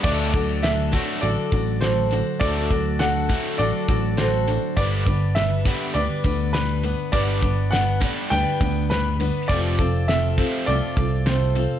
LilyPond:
<<
  \new Staff \with { instrumentName = "Grand piano" } { \time 4/4 \key d \mixolydian \tempo 4 = 102 d''4 e''4 d''4 c''4 | d''4 fis''4 d''4 c''4 | d''4 e''4 d''4 b'4 | d''4 fis''4 g''4 b'4 |
d''4 e''4 d''4 c''4 | }
  \new Staff \with { instrumentName = "Steel-string acoustic guitar" } { \time 4/4 \key d \mixolydian <d d' fis' a'>8 <d' fis' a'>8 <d d' fis' a'>8 <d' fis' a'>8 <d d' fis' a'>8 <d' fis' a'>8 <d d' fis' a'>8 <d' fis' a'>8 | <d d' fis' a'>8 <d' fis' a'>8 <d d' fis' a'>8 <d' fis' a'>8 <d d' fis' a'>8 <d' fis' a'>8 <d d' fis' a'>8 <d' fis' a'>8 | <g b d' b'>8 <b d' b'>8 <g b d' b'>8 <b d' b'>8 <g b d' b'>8 <b d' b'>8 <g b d' b'>8 <b d' b'>8 | <g b d' b'>8 <b d' b'>8 <g b d' b'>8 <b d' b'>8 <g b d' b'>8 <b d' b'>8 <g b d' b'>8 <b d' b'>8 |
<f a c' f' a'>8 <c' f' a'>8 <a c' f' a'>8 <c' f' a'>8 <f a c' f' a'>8 <c' f' a'>8 <a c' f' a'>8 <c' f' a'>8 | }
  \new Staff \with { instrumentName = "Overdriven electric guitar" } { \clef bass \time 4/4 \key d \mixolydian <d fis a>8 <d fis>8 <d fis>8 <d fis a>8 <d fis>8 <d fis>8 <d fis>8 <d fis>8 | <d fis a>8 <d fis>8 <d fis>8 <d fis a>8 <d fis>8 <d fis>8 <d fis>8 <d fis>8 | <g, d g>8 <g, d>8 <g, d>8 <g, d g>8 <g, d>8 <g, d>8 <g, d>8 <g, d>8 | <g, d g>8 <g, d>8 <g, d>8 <g, d g>8 <g, d>8 <g, d>8 <g, d>8 <g, d>8 |
<f, c f>8 <f, c>8 <f, c>8 <f, c f>8 <f, c>8 <f, c>8 <f, c>8 <f, c>8 | }
  \new Staff \with { instrumentName = "Picked electric bass" } { \clef bass \time 4/4 \key d \mixolydian d,2 a,,16 r16 a,,4. | d,2 a,,16 r16 a,,4. | g,,2 d,16 r16 d,4. | g,,2 d,16 r16 d,4. |
f,,2 c,16 r16 c,4. | }
  \new DrumStaff \with { instrumentName = "Drums" } \drummode { \time 4/4 <cymc bd>8 <hho bd>8 <hho sn>8 <hho bd>8 hho8 <hho bd>8 <hho sn>8 hho8 | <hho bd>8 <hho bd>8 <hho sn>8 <hho bd>8 hho8 <hho bd>8 <hho sn>8 hho8 | <hho bd>8 <hho bd>8 <hho sn>8 <hho bd>8 hho8 <hho bd>8 <hho sn>8 hho8 | <hho bd>8 <hho bd>8 <hho sn>8 <hho bd>8 hho8 <hho bd>8 <hho sn>8 hho8 |
<hho bd>8 <hho bd>8 <hho sn>8 <hho bd>8 hho8 <hho bd>8 <hho sn>8 hho8 | }
>>